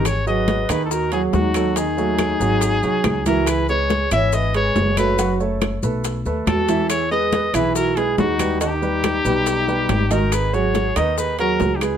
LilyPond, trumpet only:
\new Staff \with { instrumentName = "Trumpet" } { \time 4/4 \key gis \minor \tempo 4 = 140 cis''8 dis''4 b'16. a'32 ais'8 gis'8 fis'4 | gis'2.~ gis'8 ais'8 | b'8 cis''4 e''8 dis''8 cis''4 b'8~ | b'8 r2 r8 a'4 |
cis''8 dis''4 b'8 ais'8 gis'8 fis'4 | g'2.~ g'8 ais'8 | b'8 cis''4 dis''8 b'8 ais'8~ \tuplet 3/2 { ais'8 g'16 gis'8. } | }